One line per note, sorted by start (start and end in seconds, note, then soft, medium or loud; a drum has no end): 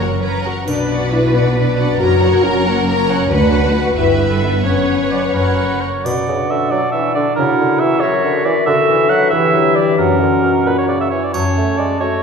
0.00 0.47 F#1 soft
0.00 0.47 F#2 soft
0.00 0.70 F#2 soft
0.00 0.70 C#4 soft
0.00 1.11 F#4 soft
0.00 0.23 F#4 soft
0.00 0.43 A#4 soft
0.00 0.21 A#4 soft
0.00 0.08 C#5 soft
0.00 0.23 F#5 soft
0.21 0.44 A#4 soft
0.21 0.44 B4 soft
0.21 0.69 C#5 soft
0.21 0.44 C#5 soft
0.21 0.43 A#5 soft
0.44 0.69 F#4 soft
0.44 0.67 A#4 soft
0.44 0.69 A#4 soft
0.44 0.68 A#4 soft
0.44 0.67 F#5 soft
0.66 1.97 B1 soft
0.66 2.02 B2 soft
0.66 1.97 B2 soft
0.66 1.09 D4 soft
0.66 0.89 D4 soft
0.66 1.96 B4 soft
0.66 0.89 B4 soft
0.66 0.89 D5 soft
0.66 triangle soft
0.90 2.03 D4 soft
0.90 1.12 F#4 soft
0.90 1.13 D5 soft
0.90 1.14 F#5 soft
1.11 1.35 D4 soft
1.11 1.34 E4 medium
1.11 2.43 F#4 soft
1.11 1.34 B4 soft
1.11 1.35 D5 soft
1.34 1.77 D4 medium
1.34 1.56 F#4 soft
1.34 1.77 B4 soft
1.34 1.56 D5 soft
1.34 1.57 F#5 soft
1.56 1.78 D4 soft
1.56 1.77 B4 soft
1.56 2.02 D5 soft
1.56 1.78 D5 soft
1.78 2.00 D4 medium
1.78 2.01 F#4 soft
1.78 2.02 B4 soft
1.78 2.01 D5 soft
1.78 2.01 F#5 soft
1.99 3.28 F#1 medium
1.99 3.28 F#2 soft
1.99 3.33 F#2 soft
1.99 2.21 C#4 soft
1.99 2.43 F#4 medium
1.99 3.28 A#4 medium
1.99 2.21 A#4 soft
1.99 2.21 A#5 soft
2.22 3.33 C#4 soft
2.22 2.45 F#4 soft
2.22 2.45 C#5 soft
2.22 2.45 F#5 soft
2.43 2.66 C#4 medium
2.43 2.67 C#4 soft
2.43 3.73 F#4 soft
2.43 2.67 A#4 soft
2.43 2.66 A#5 soft
2.65 3.08 A#3 medium
2.65 2.88 F#4 soft
2.65 3.08 A#4 soft
2.65 2.88 C#5 soft
2.65 2.89 F#5 soft
2.87 3.08 C#4 soft
2.87 3.08 A#4 soft
2.87 3.32 C#5 soft
2.87 3.08 A#5 soft
3.09 3.31 C#4 medium
3.09 3.31 F#4 soft
3.09 3.32 A#4 soft
3.09 3.31 C#5 soft
3.09 3.30 F#5 soft
3.30 3.92 D2 medium
3.30 3.93 D2 soft
3.30 3.98 D3 soft
3.30 3.74 D4 medium
3.30 3.93 F#4 medium
3.30 3.95 B4 medium
3.30 3.93 B4 soft
3.30 3.93 F#5 soft
3.53 4.19 B3 soft
3.74 3.96 F#4 medium
3.74 3.98 F#4 soft
3.74 4.41 B4 soft
3.95 4.64 G1 soft
3.95 4.63 G2 soft
3.95 4.67 G2 soft
3.95 4.42 E4 medium
3.95 4.30 G4 soft
3.95 4.63 B4 soft
3.95 4.64 B4 soft
3.95 4.65 E5 soft
4.20 5.37 B3 soft
4.30 4.65 A4 soft
4.42 4.66 B3 soft
4.42 4.67 E4 soft
4.42 5.11 B4 soft
4.65 5.34 F#1 soft
4.65 5.34 F#2 soft
4.65 5.33 F#2 soft
4.65 5.83 C#4 soft
4.65 5.34 B4 soft
4.65 5.33 C#5 soft
4.65 5.68 C#5 soft
4.65 5.34 F#5 soft
4.88 5.57 C#4 soft
5.10 5.80 F#4 soft
5.10 5.37 B4 soft
5.10 5.21 D5 soft
5.34 5.83 F#1 soft
5.34 5.83 F#2 soft
5.34 6.07 F#2 soft
5.34 5.84 A#4 soft
5.34 5.83 B4 soft
5.34 5.83 C#5 soft
5.34 5.83 F#5 soft
5.58 6.07 C#4 soft
5.81 6.48 F#4 soft
5.81 6.07 A#4 soft
5.81 6.06 C#5 soft
6.05 7.39 B2 soft
6.05 6.16 B2 soft
6.05 7.33 D4 soft
6.05 6.73 F#4 soft
6.05 6.52 D5 medium
6.05 7.33 F#5 soft
6.05 triangle soft
6.27 6.38 C#3 soft
6.27 7.15 D4 soft
6.49 6.71 D3 soft
6.49 6.93 F#4 soft
6.49 6.72 E5 medium
6.70 6.81 F#3 soft
6.70 7.39 D4 soft
6.70 6.91 D5 medium
6.70 7.39 D5 soft
6.92 7.15 E3 soft
6.92 7.79 F#4 soft
6.92 7.14 E5 medium
7.15 7.26 D3 soft
7.15 7.39 D4 soft
7.15 7.35 D5 medium
7.36 8.68 C#3 soft
7.36 7.48 C#3 soft
7.36 8.04 E4 soft
7.36 8.01 F#4 medium
7.36 7.81 A#4 medium
7.36 8.04 F#5 soft
7.59 7.81 D3 medium
7.59 8.44 E4 soft
7.80 8.04 E3 medium
7.80 8.22 F#4 soft
7.80 8.01 E5 medium
8.00 8.24 F#3 medium
8.00 8.66 F#4 medium
8.00 8.67 A#4 medium
8.00 8.47 C#5 medium
8.00 9.98 E5 medium
8.00 8.68 E5 soft
8.23 8.44 D3 medium
8.23 9.10 F#4 soft
8.45 8.55 E3 soft
8.45 8.68 E4 soft
8.45 8.65 D5 medium
8.66 8.76 D3 medium
8.66 9.34 D3 medium
8.66 9.34 F#4 medium
8.66 9.32 A4 medium
8.66 9.10 E5 medium
8.88 9.09 E3 medium
8.88 9.53 D4 soft
9.09 9.33 F#3 soft
9.09 9.34 F#4 soft
9.09 9.75 B4 soft
9.09 9.29 F#5 medium
9.30 9.53 E3 medium
9.30 10.00 E3 soft
9.30 9.97 E4 soft
9.30 9.99 G4 medium
9.30 9.77 E5 medium
9.54 9.75 F#3 soft
9.54 10.00 D4 soft
9.75 9.85 G3 soft
9.75 10.00 G4 soft
9.75 10.00 B4 soft
9.75 9.98 D5 medium
9.98 11.33 F#2 soft
9.98 10.21 F#3 soft
9.98 11.09 C#4 soft
9.98 10.99 F#4 soft
9.98 10.68 A#4 medium
9.98 11.10 F#5 soft
10.20 10.44 D3 soft
10.20 11.11 C#4 soft
10.43 10.65 B2 soft
10.43 10.89 F#4 soft
10.66 10.76 A#2 soft
10.66 10.78 B4 soft
10.66 12.00 C#5 soft
10.78 10.83 C#5 medium
10.88 11.14 C#3 soft
10.88 11.77 F#4 soft
10.88 11.00 D5 medium
11.01 11.06 E5 soft
11.10 11.34 E3 soft
11.10 11.55 C#4 soft
11.10 11.26 C#5 soft
11.24 11.33 D5 soft
11.33 12.23 F#2 soft
11.33 11.44 F#3 soft
11.33 12.02 C#4 soft
11.33 11.79 C#5 medium
11.33 12.23 A5 soft
11.33 triangle soft
11.56 11.78 A3 soft
11.56 12.23 C#4 soft
11.78 12.03 G#3 soft
11.78 12.22 F#4 soft
11.78 11.99 D5 medium
12.00 12.22 A3 soft
12.00 12.23 C#4 soft
12.00 12.23 F#4 soft
12.00 12.23 C#5 medium
12.00 12.23 C#5 soft